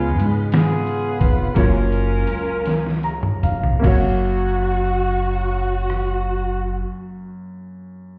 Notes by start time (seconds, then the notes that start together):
Already playing: C#2 C#3 G#3 B3 C#4 F4 G#4 C#5
0.18 G#2, closed hi-hat
0.52 B3 F4 G#4, snare, closed hi-hat
0.87 closed hi-hat
1.19 F1 B4, kick, closed hi-hat
1.54 F#1 F#3 A#3 C#4 F4 A#4 C#5, kick, closed hi-hat
1.92 closed hi-hat
2.27 C#2, closed hi-hat
2.66 snare, closed hi-hat
2.87 snare
3.03 A#5, closed hi-hat
3.23 mid tom
3.43 F1 F5, closed hi-hat, mid tom
3.63 floor tom
3.79 F#2 A#3 C#4 F5
3.84 F#1 F#4 C#5, kick, crash
5.90 cross-stick